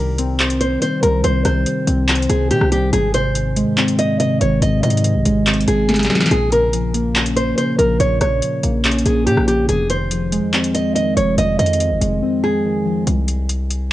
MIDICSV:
0, 0, Header, 1, 5, 480
1, 0, Start_track
1, 0, Tempo, 422535
1, 1408, Time_signature, 4, 2, 24, 8
1, 15823, End_track
2, 0, Start_track
2, 0, Title_t, "Nylon-string guitar"
2, 0, Program_c, 0, 24
2, 0, Note_on_c, 0, 70, 89
2, 644, Note_off_c, 0, 70, 0
2, 688, Note_on_c, 0, 72, 83
2, 899, Note_off_c, 0, 72, 0
2, 930, Note_on_c, 0, 72, 89
2, 1140, Note_off_c, 0, 72, 0
2, 1167, Note_on_c, 0, 70, 74
2, 1378, Note_off_c, 0, 70, 0
2, 1411, Note_on_c, 0, 72, 101
2, 1620, Note_off_c, 0, 72, 0
2, 1650, Note_on_c, 0, 72, 88
2, 2563, Note_off_c, 0, 72, 0
2, 2607, Note_on_c, 0, 68, 86
2, 2819, Note_off_c, 0, 68, 0
2, 2850, Note_on_c, 0, 67, 94
2, 3060, Note_off_c, 0, 67, 0
2, 3088, Note_on_c, 0, 67, 83
2, 3299, Note_off_c, 0, 67, 0
2, 3327, Note_on_c, 0, 68, 106
2, 3538, Note_off_c, 0, 68, 0
2, 3571, Note_on_c, 0, 72, 86
2, 4484, Note_off_c, 0, 72, 0
2, 4530, Note_on_c, 0, 75, 87
2, 4740, Note_off_c, 0, 75, 0
2, 4769, Note_on_c, 0, 75, 85
2, 4980, Note_off_c, 0, 75, 0
2, 5011, Note_on_c, 0, 73, 76
2, 5221, Note_off_c, 0, 73, 0
2, 5248, Note_on_c, 0, 75, 97
2, 5459, Note_off_c, 0, 75, 0
2, 5486, Note_on_c, 0, 75, 80
2, 6401, Note_off_c, 0, 75, 0
2, 6450, Note_on_c, 0, 68, 85
2, 7126, Note_off_c, 0, 68, 0
2, 7170, Note_on_c, 0, 68, 104
2, 7380, Note_off_c, 0, 68, 0
2, 7411, Note_on_c, 0, 70, 89
2, 8324, Note_off_c, 0, 70, 0
2, 8367, Note_on_c, 0, 72, 81
2, 8579, Note_off_c, 0, 72, 0
2, 8608, Note_on_c, 0, 72, 91
2, 8819, Note_off_c, 0, 72, 0
2, 8844, Note_on_c, 0, 70, 72
2, 9057, Note_off_c, 0, 70, 0
2, 9087, Note_on_c, 0, 73, 106
2, 9299, Note_off_c, 0, 73, 0
2, 9329, Note_on_c, 0, 73, 90
2, 10243, Note_off_c, 0, 73, 0
2, 10289, Note_on_c, 0, 68, 85
2, 10499, Note_off_c, 0, 68, 0
2, 10525, Note_on_c, 0, 67, 93
2, 10737, Note_off_c, 0, 67, 0
2, 10766, Note_on_c, 0, 67, 80
2, 10978, Note_off_c, 0, 67, 0
2, 11006, Note_on_c, 0, 68, 95
2, 11218, Note_off_c, 0, 68, 0
2, 11249, Note_on_c, 0, 72, 90
2, 12163, Note_off_c, 0, 72, 0
2, 12207, Note_on_c, 0, 75, 83
2, 12419, Note_off_c, 0, 75, 0
2, 12445, Note_on_c, 0, 75, 84
2, 12657, Note_off_c, 0, 75, 0
2, 12687, Note_on_c, 0, 73, 77
2, 12898, Note_off_c, 0, 73, 0
2, 12929, Note_on_c, 0, 75, 98
2, 13140, Note_off_c, 0, 75, 0
2, 13168, Note_on_c, 0, 75, 85
2, 14082, Note_off_c, 0, 75, 0
2, 14128, Note_on_c, 0, 68, 89
2, 14805, Note_off_c, 0, 68, 0
2, 15823, End_track
3, 0, Start_track
3, 0, Title_t, "Synth keys"
3, 0, Program_c, 1, 88
3, 0, Control_c, 1, 64, 127
3, 0, Note_on_c, 1, 48, 87
3, 0, Note_on_c, 1, 51, 77
3, 0, Note_on_c, 1, 55, 82
3, 210, Note_on_c, 1, 60, 108
3, 453, Note_on_c, 1, 72, 91
3, 690, Note_off_c, 1, 48, 0
3, 911, Note_off_c, 1, 51, 0
3, 925, Note_on_c, 1, 51, 86
3, 1149, Note_off_c, 1, 55, 0
3, 1163, Note_on_c, 1, 55, 83
3, 1409, Note_off_c, 1, 60, 0
3, 1415, Note_on_c, 1, 48, 91
3, 1635, Note_off_c, 1, 51, 0
3, 1648, Note_on_c, 1, 51, 76
3, 1650, Note_off_c, 1, 72, 0
3, 1878, Note_off_c, 1, 55, 0
3, 1892, Note_on_c, 1, 55, 77
3, 2126, Note_on_c, 1, 60, 98
3, 2375, Note_on_c, 1, 72, 81
3, 2611, Note_off_c, 1, 48, 0
3, 2840, Note_off_c, 1, 51, 0
3, 2854, Note_on_c, 1, 51, 91
3, 3073, Note_off_c, 1, 55, 0
3, 3086, Note_on_c, 1, 55, 82
3, 3327, Note_off_c, 1, 55, 0
3, 3327, Note_off_c, 1, 60, 0
3, 3331, Note_off_c, 1, 51, 0
3, 3331, Note_off_c, 1, 72, 0
3, 3332, Note_on_c, 1, 44, 89
3, 3344, Control_c, 1, 64, 0
3, 3511, Control_c, 1, 64, 127
3, 3573, Note_on_c, 1, 48, 83
3, 3806, Note_on_c, 1, 51, 79
3, 4049, Note_on_c, 1, 56, 94
3, 4288, Note_on_c, 1, 60, 94
3, 4530, Note_off_c, 1, 44, 0
3, 4754, Note_off_c, 1, 48, 0
3, 4768, Note_on_c, 1, 48, 91
3, 4997, Note_off_c, 1, 51, 0
3, 5011, Note_on_c, 1, 51, 84
3, 5243, Note_on_c, 1, 44, 88
3, 5248, Note_off_c, 1, 56, 0
3, 5471, Note_off_c, 1, 48, 0
3, 5485, Note_on_c, 1, 48, 84
3, 5488, Note_off_c, 1, 60, 0
3, 5707, Note_off_c, 1, 51, 0
3, 5720, Note_on_c, 1, 51, 83
3, 5970, Note_on_c, 1, 56, 94
3, 6210, Note_on_c, 1, 60, 88
3, 6445, Note_off_c, 1, 44, 0
3, 6672, Note_off_c, 1, 48, 0
3, 6685, Note_on_c, 1, 48, 91
3, 6914, Note_off_c, 1, 51, 0
3, 6928, Note_on_c, 1, 51, 85
3, 7166, Note_off_c, 1, 48, 0
3, 7168, Note_off_c, 1, 51, 0
3, 7169, Note_off_c, 1, 56, 0
3, 7169, Note_off_c, 1, 60, 0
3, 7172, Note_on_c, 1, 46, 90
3, 7184, Control_c, 1, 64, 0
3, 7409, Note_on_c, 1, 49, 77
3, 7412, Control_c, 1, 64, 127
3, 7647, Note_on_c, 1, 53, 79
3, 7882, Note_on_c, 1, 58, 93
3, 8129, Note_on_c, 1, 61, 74
3, 8370, Note_off_c, 1, 46, 0
3, 8595, Note_off_c, 1, 49, 0
3, 8608, Note_on_c, 1, 49, 88
3, 8833, Note_off_c, 1, 53, 0
3, 8847, Note_on_c, 1, 53, 78
3, 9085, Note_off_c, 1, 58, 0
3, 9092, Note_on_c, 1, 46, 94
3, 9318, Note_off_c, 1, 49, 0
3, 9328, Note_off_c, 1, 61, 0
3, 9331, Note_on_c, 1, 49, 77
3, 9552, Note_off_c, 1, 53, 0
3, 9566, Note_on_c, 1, 53, 77
3, 9811, Note_on_c, 1, 58, 94
3, 10048, Note_on_c, 1, 61, 90
3, 10290, Note_off_c, 1, 46, 0
3, 10510, Note_off_c, 1, 49, 0
3, 10524, Note_on_c, 1, 49, 89
3, 10753, Note_off_c, 1, 53, 0
3, 10767, Note_on_c, 1, 53, 77
3, 11006, Note_off_c, 1, 49, 0
3, 11006, Note_on_c, 1, 41, 92
3, 11007, Note_off_c, 1, 53, 0
3, 11008, Note_off_c, 1, 61, 0
3, 11009, Note_off_c, 1, 58, 0
3, 11022, Control_c, 1, 64, 0
3, 11252, Control_c, 1, 64, 127
3, 11253, Note_on_c, 1, 51, 72
3, 11491, Note_on_c, 1, 53, 77
3, 11728, Note_on_c, 1, 56, 101
3, 11969, Note_on_c, 1, 60, 86
3, 12207, Note_off_c, 1, 41, 0
3, 12440, Note_off_c, 1, 51, 0
3, 12454, Note_on_c, 1, 51, 86
3, 12679, Note_off_c, 1, 53, 0
3, 12692, Note_on_c, 1, 53, 79
3, 12928, Note_off_c, 1, 56, 0
3, 12931, Note_on_c, 1, 41, 91
3, 13156, Note_off_c, 1, 51, 0
3, 13169, Note_off_c, 1, 60, 0
3, 13170, Note_on_c, 1, 51, 82
3, 13400, Note_off_c, 1, 53, 0
3, 13414, Note_on_c, 1, 53, 77
3, 13642, Note_on_c, 1, 56, 94
3, 13888, Note_on_c, 1, 60, 89
3, 14129, Note_off_c, 1, 41, 0
3, 14362, Note_off_c, 1, 51, 0
3, 14376, Note_on_c, 1, 51, 85
3, 14586, Note_off_c, 1, 53, 0
3, 14600, Note_on_c, 1, 53, 85
3, 14844, Note_off_c, 1, 53, 0
3, 14845, Note_off_c, 1, 56, 0
3, 14848, Note_off_c, 1, 60, 0
3, 14852, Note_off_c, 1, 51, 0
3, 14862, Control_c, 1, 64, 0
3, 15075, Control_c, 1, 64, 127
3, 15823, End_track
4, 0, Start_track
4, 0, Title_t, "808-style bass"
4, 0, Program_c, 2, 38
4, 0, Note_on_c, 2, 36, 114
4, 882, Note_off_c, 2, 36, 0
4, 1167, Note_on_c, 2, 36, 106
4, 1398, Note_off_c, 2, 36, 0
4, 1407, Note_on_c, 2, 36, 109
4, 1638, Note_off_c, 2, 36, 0
4, 1648, Note_on_c, 2, 36, 104
4, 1878, Note_off_c, 2, 36, 0
4, 2128, Note_on_c, 2, 36, 104
4, 2589, Note_off_c, 2, 36, 0
4, 2608, Note_on_c, 2, 36, 106
4, 2848, Note_on_c, 2, 48, 95
4, 2865, Note_off_c, 2, 36, 0
4, 2962, Note_off_c, 2, 48, 0
4, 2967, Note_on_c, 2, 36, 104
4, 3313, Note_off_c, 2, 36, 0
4, 3327, Note_on_c, 2, 32, 114
4, 4134, Note_off_c, 2, 32, 0
4, 5008, Note_on_c, 2, 32, 100
4, 5238, Note_off_c, 2, 32, 0
4, 5248, Note_on_c, 2, 32, 109
4, 5478, Note_off_c, 2, 32, 0
4, 5488, Note_on_c, 2, 44, 105
4, 5848, Note_on_c, 2, 34, 101
4, 5866, Note_off_c, 2, 44, 0
4, 5962, Note_off_c, 2, 34, 0
4, 5968, Note_on_c, 2, 32, 108
4, 6429, Note_off_c, 2, 32, 0
4, 6447, Note_on_c, 2, 32, 105
4, 6908, Note_off_c, 2, 32, 0
4, 7167, Note_on_c, 2, 34, 112
4, 8562, Note_off_c, 2, 34, 0
4, 8848, Note_on_c, 2, 34, 103
4, 9078, Note_off_c, 2, 34, 0
4, 9088, Note_on_c, 2, 34, 107
4, 9318, Note_off_c, 2, 34, 0
4, 9327, Note_on_c, 2, 34, 104
4, 9558, Note_off_c, 2, 34, 0
4, 9808, Note_on_c, 2, 34, 104
4, 10269, Note_off_c, 2, 34, 0
4, 10288, Note_on_c, 2, 34, 106
4, 10527, Note_on_c, 2, 46, 97
4, 10544, Note_off_c, 2, 34, 0
4, 10641, Note_off_c, 2, 46, 0
4, 10647, Note_on_c, 2, 34, 103
4, 10993, Note_off_c, 2, 34, 0
4, 11007, Note_on_c, 2, 29, 112
4, 11814, Note_off_c, 2, 29, 0
4, 12688, Note_on_c, 2, 29, 103
4, 12918, Note_off_c, 2, 29, 0
4, 12928, Note_on_c, 2, 29, 111
4, 13158, Note_off_c, 2, 29, 0
4, 13167, Note_on_c, 2, 41, 104
4, 13527, Note_on_c, 2, 31, 100
4, 13544, Note_off_c, 2, 41, 0
4, 13641, Note_off_c, 2, 31, 0
4, 13647, Note_on_c, 2, 29, 108
4, 13878, Note_off_c, 2, 29, 0
4, 14848, Note_on_c, 2, 36, 111
4, 15823, Note_off_c, 2, 36, 0
4, 15823, End_track
5, 0, Start_track
5, 0, Title_t, "Drums"
5, 209, Note_on_c, 9, 42, 75
5, 322, Note_off_c, 9, 42, 0
5, 448, Note_on_c, 9, 42, 45
5, 449, Note_on_c, 9, 39, 116
5, 562, Note_off_c, 9, 39, 0
5, 562, Note_off_c, 9, 42, 0
5, 568, Note_on_c, 9, 42, 74
5, 682, Note_off_c, 9, 42, 0
5, 689, Note_on_c, 9, 42, 77
5, 802, Note_off_c, 9, 42, 0
5, 929, Note_on_c, 9, 42, 79
5, 1043, Note_off_c, 9, 42, 0
5, 1169, Note_on_c, 9, 42, 76
5, 1282, Note_off_c, 9, 42, 0
5, 1408, Note_on_c, 9, 42, 82
5, 1522, Note_off_c, 9, 42, 0
5, 1646, Note_on_c, 9, 42, 79
5, 1648, Note_on_c, 9, 37, 73
5, 1760, Note_off_c, 9, 42, 0
5, 1762, Note_off_c, 9, 37, 0
5, 1888, Note_on_c, 9, 42, 92
5, 2001, Note_off_c, 9, 42, 0
5, 2128, Note_on_c, 9, 42, 81
5, 2242, Note_off_c, 9, 42, 0
5, 2368, Note_on_c, 9, 39, 115
5, 2368, Note_on_c, 9, 42, 60
5, 2448, Note_off_c, 9, 42, 0
5, 2448, Note_on_c, 9, 42, 60
5, 2482, Note_off_c, 9, 39, 0
5, 2527, Note_off_c, 9, 42, 0
5, 2527, Note_on_c, 9, 42, 57
5, 2608, Note_off_c, 9, 42, 0
5, 2608, Note_on_c, 9, 42, 78
5, 2722, Note_off_c, 9, 42, 0
5, 2849, Note_on_c, 9, 42, 77
5, 2963, Note_off_c, 9, 42, 0
5, 2968, Note_on_c, 9, 37, 89
5, 3082, Note_off_c, 9, 37, 0
5, 3089, Note_on_c, 9, 42, 66
5, 3202, Note_off_c, 9, 42, 0
5, 3327, Note_on_c, 9, 42, 82
5, 3441, Note_off_c, 9, 42, 0
5, 3566, Note_on_c, 9, 42, 79
5, 3680, Note_off_c, 9, 42, 0
5, 3807, Note_on_c, 9, 42, 90
5, 3921, Note_off_c, 9, 42, 0
5, 4048, Note_on_c, 9, 42, 78
5, 4162, Note_off_c, 9, 42, 0
5, 4288, Note_on_c, 9, 42, 43
5, 4289, Note_on_c, 9, 39, 116
5, 4402, Note_off_c, 9, 42, 0
5, 4403, Note_off_c, 9, 39, 0
5, 4409, Note_on_c, 9, 42, 71
5, 4522, Note_off_c, 9, 42, 0
5, 4529, Note_on_c, 9, 42, 80
5, 4643, Note_off_c, 9, 42, 0
5, 4770, Note_on_c, 9, 42, 79
5, 4883, Note_off_c, 9, 42, 0
5, 5009, Note_on_c, 9, 42, 73
5, 5123, Note_off_c, 9, 42, 0
5, 5248, Note_on_c, 9, 42, 83
5, 5362, Note_off_c, 9, 42, 0
5, 5488, Note_on_c, 9, 42, 66
5, 5568, Note_off_c, 9, 42, 0
5, 5568, Note_on_c, 9, 42, 66
5, 5648, Note_off_c, 9, 42, 0
5, 5648, Note_on_c, 9, 42, 67
5, 5728, Note_off_c, 9, 42, 0
5, 5728, Note_on_c, 9, 42, 89
5, 5841, Note_off_c, 9, 42, 0
5, 5968, Note_on_c, 9, 42, 85
5, 6082, Note_off_c, 9, 42, 0
5, 6208, Note_on_c, 9, 42, 61
5, 6209, Note_on_c, 9, 39, 116
5, 6289, Note_off_c, 9, 42, 0
5, 6289, Note_on_c, 9, 42, 58
5, 6323, Note_off_c, 9, 39, 0
5, 6368, Note_off_c, 9, 42, 0
5, 6368, Note_on_c, 9, 42, 60
5, 6449, Note_off_c, 9, 42, 0
5, 6449, Note_on_c, 9, 42, 81
5, 6562, Note_off_c, 9, 42, 0
5, 6688, Note_on_c, 9, 38, 63
5, 6688, Note_on_c, 9, 42, 66
5, 6748, Note_off_c, 9, 38, 0
5, 6748, Note_on_c, 9, 38, 62
5, 6768, Note_off_c, 9, 42, 0
5, 6768, Note_on_c, 9, 42, 69
5, 6808, Note_off_c, 9, 38, 0
5, 6808, Note_on_c, 9, 38, 78
5, 6848, Note_off_c, 9, 42, 0
5, 6848, Note_on_c, 9, 42, 65
5, 6868, Note_off_c, 9, 38, 0
5, 6868, Note_on_c, 9, 38, 73
5, 6928, Note_off_c, 9, 38, 0
5, 6928, Note_off_c, 9, 42, 0
5, 6928, Note_on_c, 9, 38, 88
5, 6928, Note_on_c, 9, 42, 41
5, 6988, Note_off_c, 9, 38, 0
5, 6988, Note_off_c, 9, 42, 0
5, 6988, Note_on_c, 9, 38, 83
5, 6988, Note_on_c, 9, 42, 52
5, 7048, Note_off_c, 9, 38, 0
5, 7048, Note_off_c, 9, 42, 0
5, 7048, Note_on_c, 9, 38, 109
5, 7048, Note_on_c, 9, 42, 62
5, 7109, Note_off_c, 9, 38, 0
5, 7109, Note_off_c, 9, 42, 0
5, 7109, Note_on_c, 9, 38, 99
5, 7109, Note_on_c, 9, 42, 70
5, 7169, Note_off_c, 9, 42, 0
5, 7169, Note_on_c, 9, 42, 79
5, 7222, Note_off_c, 9, 38, 0
5, 7282, Note_off_c, 9, 42, 0
5, 7406, Note_on_c, 9, 42, 78
5, 7520, Note_off_c, 9, 42, 0
5, 7648, Note_on_c, 9, 42, 90
5, 7761, Note_off_c, 9, 42, 0
5, 7888, Note_on_c, 9, 42, 77
5, 8002, Note_off_c, 9, 42, 0
5, 8128, Note_on_c, 9, 42, 43
5, 8129, Note_on_c, 9, 39, 116
5, 8241, Note_off_c, 9, 42, 0
5, 8242, Note_off_c, 9, 39, 0
5, 8248, Note_on_c, 9, 42, 73
5, 8361, Note_off_c, 9, 42, 0
5, 8368, Note_on_c, 9, 42, 78
5, 8482, Note_off_c, 9, 42, 0
5, 8609, Note_on_c, 9, 42, 77
5, 8723, Note_off_c, 9, 42, 0
5, 8849, Note_on_c, 9, 42, 70
5, 8963, Note_off_c, 9, 42, 0
5, 9088, Note_on_c, 9, 42, 79
5, 9201, Note_off_c, 9, 42, 0
5, 9325, Note_on_c, 9, 42, 77
5, 9328, Note_on_c, 9, 37, 73
5, 9439, Note_off_c, 9, 42, 0
5, 9441, Note_off_c, 9, 37, 0
5, 9567, Note_on_c, 9, 42, 87
5, 9681, Note_off_c, 9, 42, 0
5, 9808, Note_on_c, 9, 42, 84
5, 9921, Note_off_c, 9, 42, 0
5, 10047, Note_on_c, 9, 42, 60
5, 10048, Note_on_c, 9, 39, 113
5, 10127, Note_off_c, 9, 42, 0
5, 10127, Note_on_c, 9, 42, 61
5, 10162, Note_off_c, 9, 39, 0
5, 10207, Note_off_c, 9, 42, 0
5, 10207, Note_on_c, 9, 42, 58
5, 10287, Note_off_c, 9, 42, 0
5, 10287, Note_on_c, 9, 42, 77
5, 10401, Note_off_c, 9, 42, 0
5, 10529, Note_on_c, 9, 42, 76
5, 10642, Note_off_c, 9, 42, 0
5, 10648, Note_on_c, 9, 37, 93
5, 10761, Note_off_c, 9, 37, 0
5, 10768, Note_on_c, 9, 42, 65
5, 10882, Note_off_c, 9, 42, 0
5, 11007, Note_on_c, 9, 42, 78
5, 11120, Note_off_c, 9, 42, 0
5, 11245, Note_on_c, 9, 42, 75
5, 11358, Note_off_c, 9, 42, 0
5, 11486, Note_on_c, 9, 42, 90
5, 11600, Note_off_c, 9, 42, 0
5, 11728, Note_on_c, 9, 42, 76
5, 11841, Note_off_c, 9, 42, 0
5, 11967, Note_on_c, 9, 42, 44
5, 11968, Note_on_c, 9, 39, 116
5, 12081, Note_off_c, 9, 42, 0
5, 12082, Note_off_c, 9, 39, 0
5, 12087, Note_on_c, 9, 42, 73
5, 12201, Note_off_c, 9, 42, 0
5, 12208, Note_on_c, 9, 42, 78
5, 12321, Note_off_c, 9, 42, 0
5, 12449, Note_on_c, 9, 42, 77
5, 12562, Note_off_c, 9, 42, 0
5, 12689, Note_on_c, 9, 42, 73
5, 12803, Note_off_c, 9, 42, 0
5, 12928, Note_on_c, 9, 42, 82
5, 13042, Note_off_c, 9, 42, 0
5, 13168, Note_on_c, 9, 42, 68
5, 13247, Note_off_c, 9, 42, 0
5, 13247, Note_on_c, 9, 42, 65
5, 13328, Note_off_c, 9, 42, 0
5, 13328, Note_on_c, 9, 42, 67
5, 13407, Note_off_c, 9, 42, 0
5, 13407, Note_on_c, 9, 42, 88
5, 13521, Note_off_c, 9, 42, 0
5, 13648, Note_on_c, 9, 42, 84
5, 13762, Note_off_c, 9, 42, 0
5, 14848, Note_on_c, 9, 42, 78
5, 14961, Note_off_c, 9, 42, 0
5, 15086, Note_on_c, 9, 42, 73
5, 15199, Note_off_c, 9, 42, 0
5, 15327, Note_on_c, 9, 42, 86
5, 15441, Note_off_c, 9, 42, 0
5, 15569, Note_on_c, 9, 42, 74
5, 15682, Note_off_c, 9, 42, 0
5, 15823, End_track
0, 0, End_of_file